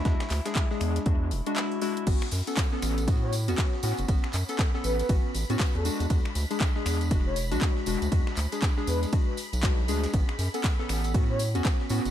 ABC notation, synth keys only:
X:1
M:4/4
L:1/16
Q:"Swing 16ths" 1/4=119
K:A
V:1 name="Synth keys"
[G,DF] z2 [G,DG]2 [G,DG]3 [G,DF]2 z [G,DF]3 [G,DF]2 | [B,CF] z2 [B,CA]2 [B,CA]3 [B,CF]2 z [B,CF]3 [B,CF]2 | [B,CF] z2 [B,CA]2 [B,CA]3 [B,CF]2 z [B,CF]3 [G,DF]2 | [G,DF] z2 [G,DG]2 [G,DG]3 [G,DF]2 z [G,DF]3 [G,DF]2 |
[G,DF] z2 [G,DG]2 [G,DG]3 [G,DF]2 z2 [G,DF] z [G,DG]2 | [B,CF] z2 [B,CA]2 [B,CA]3 [B,CF]2 z [B,CF]3 [B,CF]2 |]